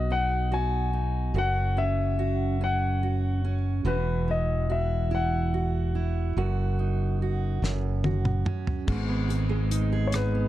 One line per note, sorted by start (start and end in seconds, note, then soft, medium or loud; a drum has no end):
0.00 1.31 B1 medium
0.00 1.35 B2 medium
0.00 0.51 F#4 soft
0.00 0.12 D#5 medium
0.10 0.92 D#4 soft
0.10 0.49 F#5 medium
0.52 1.35 F#4 medium
0.52 1.38 G#5 medium
0.93 1.43 D#4 soft
1.34 3.82 F#1 medium
1.34 3.86 F#2 medium
1.34 2.19 F#4 medium
1.38 1.80 F#5 medium
1.77 2.60 C#4 soft
1.77 2.64 E5 medium
2.19 3.03 F#4 soft
2.61 3.43 C#4 medium
2.61 3.52 F#5 medium
3.03 3.85 F#4 soft
3.44 3.94 C#4 soft
3.85 6.32 E1 medium
3.85 6.37 E3 medium
3.85 4.69 F#4 medium
3.85 4.30 B4 medium
4.28 5.10 E4 soft
4.28 4.72 D#5 medium
4.70 5.53 F#4 medium
4.70 5.14 E5 medium
5.11 5.94 E4 soft
5.11 8.02 F#5 medium
5.54 6.37 F#4 soft
5.95 6.45 E4 soft
6.37 7.58 F#1 medium
6.37 7.62 F#2 medium
6.37 7.21 F#4 medium
6.79 7.71 D#4 soft
7.22 7.72 F#4 medium
7.62 8.42 F#1 medium
7.62 8.87 F#2 medium
7.62 snare soft
8.04 8.97 F#4 soft
8.04 high tom medium
8.25 mid tom medium
8.45 8.96 C#4 soft
8.45 mid tom medium
8.67 floor tom medium
8.87 10.48 G#1 medium
8.87 10.13 G#2 medium
8.87 10.48 D#3 medium
8.87 10.48 G#3 soft
8.87 10.48 B3 medium
8.87 kick medium
8.87 crash medium
9.08 10.34 B3 soft
9.29 9.92 G#4 soft
9.29 closed hi-hat soft
9.49 10.48 G#3 medium
9.71 10.48 D#4 soft
9.71 closed hi-hat medium
9.92 10.48 G#4 medium
10.07 10.14 C#5 medium
10.12 10.48 G#2 medium
10.12 10.48 B4 medium
10.12 cross-stick medium
10.12 closed hi-hat medium
10.35 10.48 B3 soft